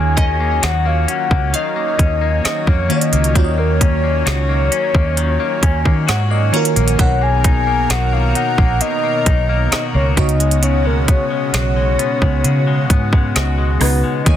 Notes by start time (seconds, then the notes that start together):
Already playing: D#2 D#3 F#3 A#3 C#4 F4 F#4 C#5 G#5
0.17 C#4 D#5 G#5, kick, closed hi-hat
0.40 A#3
0.63 D#2 F#4 F#5, snare, closed hi-hat
0.85 A#3 F5
1.08 C#4 F#5, closed hi-hat
1.31 C#2 A#3, kick
1.53 D#3 D#5 F5, closed hi-hat
1.76 A#3
1.99 D#2 C#4, kick, closed hi-hat
2.21 A#3
2.45 F#4 D#5, muted fingered electric bass stroke, snare, closed hi-hat
2.67 F2 A#3 C#5, kick
2.88 D#3 A#3 C#4 F4 F#4 C#5 D#5, closed hi-hat
3.01 closed hi-hat
3.12 C#2 A#3, closed hi-hat
3.24 closed hi-hat
3.34 D#2 D#3 A#3 F4 F#4 C#5 D5, kick, closed hi-hat
3.44 D#5
3.58 A#3 A#4
3.81 C#4 C#5, kick, closed hi-hat
4.03 A#3 C#5
4.26 C#2 F#4, snare, closed hi-hat
4.49 A#3
4.72 C#4, closed hi-hat
4.94 D#2 A#3, kick
5.17 D#3, closed hi-hat
5.40 A#3
5.62 D#2 C#4 G#5, kick, closed hi-hat
5.85 D#3 A#3, kick
6.08 G#2 F#4 F#5, snare, closed hi-hat
6.30 A#3 D#5
6.52 D#3 A#3 C#4 F4 F#4 C#5 A#5, closed hi-hat, open hi-hat
6.56 A#4
6.65 closed hi-hat
6.76 A#1 A#3, closed hi-hat
6.88 closed hi-hat
6.98 B1 B2 D#3 B3 D#4 A#4 F#5, kick, closed hi-hat
7.02 C#5
7.21 A#3 G#5
7.44 D#4 G#5, kick, closed hi-hat
7.67 A#3
7.90 B1 F#4 F#5, snare, closed hi-hat
8.12 A#3 F5
8.35 D#4 F#5, closed hi-hat
8.58 A#1 A#3, kick
8.81 B2 D#5, closed hi-hat
9.04 A#3
9.26 B1 D#4, kick, closed hi-hat
9.49 A#3
9.72 F#4 D#5, snare, closed hi-hat
9.94 C#2 A#3 C#5
10.16 C#2 C#3 B3 D#4 F#4 C#5 D#5, kick, closed hi-hat
10.29 closed hi-hat
10.40 G#3, closed hi-hat
10.51 closed hi-hat
10.63 C#3 C#5, closed hi-hat
10.85 G#3 A#4
11.08 B3 C#5, kick, closed hi-hat
11.30 G#3 C#5
11.53 B1 F#4, snare, closed hi-hat
11.76 G#3
11.99 B3, closed hi-hat
12.22 C#2 G#3, kick
12.44 C#3, closed hi-hat
12.67 G#3
12.90 G#2 B3, kick, closed hi-hat
13.13 G#3, kick
13.35 C#2 F#4 D#5, snare, closed hi-hat
13.58 G#3
13.80 C#2 C#3 B3 D#4 F#4 B4, cross-stick, open hi-hat
14.04 G#3
14.25 D#2 C#3 D#3 F#3 A#3 D#4 F#4 C#5 D#5 G#5, kick, closed hi-hat